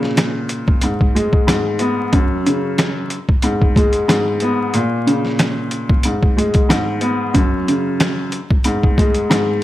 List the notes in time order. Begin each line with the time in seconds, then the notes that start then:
Already playing: A#2 C#3
0.03 snare
0.17 snare, closed hi-hat
0.49 closed hi-hat
0.68 kick
0.81 G#2, closed hi-hat
1.01 kick
1.15 G#3, closed hi-hat
1.33 kick
1.47 G#2, snare, closed hi-hat
1.79 B3, closed hi-hat
2.12 F#2, kick, closed hi-hat
2.46 C#3, closed hi-hat
2.78 snare, closed hi-hat
3.10 closed hi-hat
3.29 kick
3.42 G#2, closed hi-hat
3.62 kick
3.76 G#3, kick, closed hi-hat
3.93 closed hi-hat
4.08 G#2, snare, closed hi-hat
4.40 B3, closed hi-hat
4.74 A#2, closed hi-hat
5.07 C#3, closed hi-hat
5.25 snare
5.39 snare, closed hi-hat
5.71 closed hi-hat
5.90 kick
6.03 G#2, closed hi-hat
6.23 kick
6.37 G#3, closed hi-hat
6.54 kick, closed hi-hat
6.69 G#2, snare, closed hi-hat
7.01 B3, closed hi-hat
7.34 F#2, kick, closed hi-hat
7.68 C#3, closed hi-hat
8.00 snare, closed hi-hat
8.32 closed hi-hat
8.50 kick
8.64 G#2, closed hi-hat
8.83 kick
8.98 G#3, kick, closed hi-hat
9.15 closed hi-hat
9.30 G#2, snare, closed hi-hat